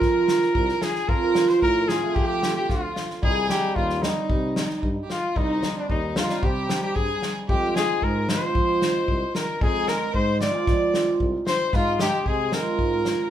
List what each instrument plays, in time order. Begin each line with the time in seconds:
Already playing: hammered dulcimer F3 C4 F4, violin A#4, cornet A#4
0.01 tuba F3, kick, snare
0.28 snare
0.42 snare
0.54 tuba C2, violin A#4, kick
0.69 snare
0.81 violin G#4, cornet G#4, snare
0.95 snare
1.07 tuba F2, hammered dulcimer F3 C4 F4, violin A#4, cornet A#4, kick
1.35 snare
1.48 violin C5, cornet C5, snare
1.61 tuba A2, violin A#4, cornet A#4, kick
1.88 hammered dulcimer C4 F4, violin G#4, cornet G#4, snare
2.03 hammered dulcimer A3 C4 F4
2.14 tuba F3, cornet G4, violin G#4, kick
2.26 violin G4
2.43 snare
2.56 cornet G4, violin G4
2.69 tuba D2, cornet F4, violin F4, kick, snare
2.96 snare
3.10 snare
3.22 tuba C2, hammered dulcimer G3 C4 D#4, violin G#4, cornet G#4, kick
3.49 hammered dulcimer G3 C4 D#4, cornet G4, snare
3.75 tuba D#2, cornet F4, violin F4, kick
3.89 snare
4.02 hammered dulcimer G3 C4 D#4, cornet D#4, violin D#4, snare
4.30 tuba C3, kick
4.56 violin D#4, snare
4.70 snare
4.83 tuba G2, kick
5.03 violin G4
5.10 cornet F4, violin F4, snare
5.36 tuba C2, hammered dulcimer G3 C4 D#4, violin D#4, cornet D#4, kick
5.63 snare
5.76 violin D4, cornet D4
5.89 tuba D#2, cornet D#4, violin D#4, kick
6.16 hammered dulcimer C4 D#4, cornet F4, violin F4, snare
6.29 hammered dulcimer G3 C4 D#4, snare
6.42 tuba C3, violin G4, cornet G4, kick
6.69 snare
6.83 violin G4, cornet G4
6.95 tuba G2, violin G#4, cornet G#4, kick
7.22 snare
7.48 tuba F2, hammered dulcimer G#3 C4 F4, violin G4, cornet G4, kick
7.74 hammered dulcimer G#3 C4 G#4, violin G#4, cornet G#4, snare
8.02 tuba G#2, violin A#4, cornet A#4, kick
8.29 hammered dulcimer G#3 C4 F4, violin C5, cornet C5, snare
8.55 tuba F3, kick
8.82 snare
9.08 tuba C2, kick
9.35 cornet A#4, violin A#4, snare
9.61 tuba F2, hammered dulcimer G#3 C4 D#4, cornet G#4, violin G#4, kick
9.87 violin A#4, cornet A#4, snare
10.13 tuba G#2, violin C5, cornet C5, kick
10.40 hammered dulcimer C4 F4, cornet D5, violin D5, snare
10.54 hammered dulcimer G#3 C4 F4
10.67 tuba F3, kick, snare
10.94 snare
11.20 tuba C2, kick
11.47 violin C5, cornet C5, snare
11.73 tuba G#2, hammered dulcimer G#3 C4 D#4, violin F4, cornet F4, kick, snare
11.99 hammered dulcimer G#3 C4 D#4, violin G4, cornet G4, snare
12.26 tuba C3, violin G#4, cornet G#4, kick
12.52 hammered dulcimer G#3 C4 F4, violin A#4, cornet A#4, snare
12.78 tuba G#2, kick
13.05 snare